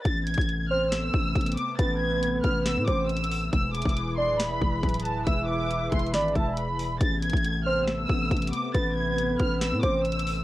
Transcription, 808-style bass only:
X:1
M:4/4
L:1/16
Q:1/4=138
K:Am
V:1 name="808-style bass" clef=bass
A,,,3 A,,,6- A,,, A,,,2 A,,,2 z2 | A,,,6 A,,,3 A,, A,,,6 | E,,,3 E,,,4 D,,,3/2 E,,,3/2 E,,,2 D,,,4 | E,,,6 E,,,2 ^G,,,2 E,,,3 F,,,3/2 E,,,3/2 |
A,,,3 A,,,6- A,,, A,,,2 A,,,2 z2 | A,,,6 A,,,3 A,, A,,,6 |]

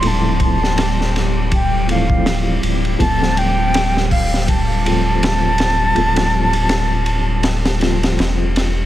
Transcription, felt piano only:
X:1
M:4/4
L:1/8
Q:"Swing 16ths" 1/4=81
K:Dm
V:1 name="Felt piano"
[F,A,CE]4- [F,A,CE] [E,F,A,C]3 | [F,A,CF]4- [F,A,CF] [F,A,CF]3 | [F,A,CF]4- [F,A,CF] [F,A,CF]3 |]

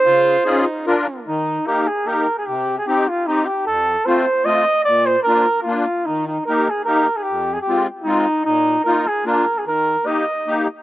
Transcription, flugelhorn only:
X:1
M:3/4
L:1/16
Q:"Swing" 1/4=150
K:Db
V:1 name="Flugelhorn"
c8 z4 | [K:Eb] E4 B2 A2 B3 A | G3 A G2 F2 E2 G2 | =A4 c4 e4 |
d2 c2 B4 F4 | E2 E2 B2 A2 B3 A | G3 A G2 z2 E4 | E4 B2 A2 B3 A |
B4 e6 z2 |]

